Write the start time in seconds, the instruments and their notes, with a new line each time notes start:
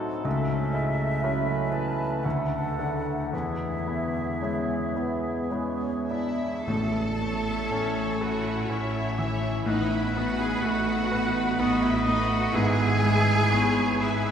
Already playing: french horn section F#3 C4, bassoon A3, grand piano C4 D#4 F#4, clarinet D4, cor anglais A4
0.24 grand piano C#2, french horn section A3 C#4, bassoon A3, clarinet C#4, flute E5
0.74 bassoon G#3, grand piano E4 A4
1.22 bassoon F#3, clarinet C#4, grand piano C#4 E4 A4, cor anglais B4
1.72 bassoon E3, grand piano E4 A4, flute A5
2.23 grand piano D2, bassoon A3, french horn section D4, clarinet D4, cor anglais A4, flute F#5
2.79 bassoon A3, grand piano D4 A4
3.31 grand piano E2, french horn section G#3 B3, bassoon B3, clarinet E4, cor anglais G#4, flute E5
3.88 grand piano B3 E4
4.42 grand piano G#3 B3 E4, bassoon C#4
4.96 bassoon B3, grand piano B3 E4
5.50 grand piano G#3 B3 E4, bassoon C#4
6.09 grand piano B3 E4, bassoon D4, cello section E4, violin section E5, flute E5
6.67 double bass section A1, timpani A2, grand piano A2, french horn section A3 C#4, cello section A4, violin section A5, flute A5
7.21 grand piano A3, viola section A3 E4, violin section C#5 E5
7.72 double bass section A1, grand piano C#4, cor anglais C#5
8.21 viola section A3 E4, cello section F#4, grand piano A4, cor anglais B4, violin section C#5 E5 F#5, flute F#5
8.69 double bass section A1, grand piano C#4, cello section E4, cor anglais C#5, violin section E5, flute E5
9.18 grand piano E3, viola section A3 E4, violin section C#5 E5, cor anglais E5
9.66 double bass section A1, grand piano A2, french horn section B3 D#4, viola section B3 D#4, cello section D#4, violin section B4 D#5 B5, flute D#5, cor anglais F#5
9.91 cello section E4, flute E5, violin section E5
10.15 grand piano B3, viola section B3 D#4, cello section F#4, violin section B4 F#5 B5, flute F#5
10.39 cello section G#4, violin section G#5, flute G#5
10.63 double bass section A1, grand piano A3, cello section F#4, flute F#5, violin section F#5
11.11 viola section B3 D#4, violin section B4 B5, grand piano B4
11.57 double bass section A1, grand piano B3, cello section F#4, cor anglais D#5, flute F#5, violin section F#5
11.81 cello section E4, flute E5, violin section E5
12.06 grand piano A3, viola section B3 D#4, cello section D#4, violin section B4 D#5 B5, flute D#5
12.29 cello section F#4, flute F#5, violin section F#5
12.53 double bass section G#1, grand piano G#2, french horn section B3 E4, cello section G#4, cor anglais E5, flute G#5, violin section G#5
13.02 grand piano G#3, viola section B3 E4, violin section B4 G#5
13.50 double bass section G#1, grand piano B3, cor anglais C#5
14.00 viola section B3 E4, cello section E4, grand piano G#4, cor anglais B4, violin section B4 E5 G#5, flute E5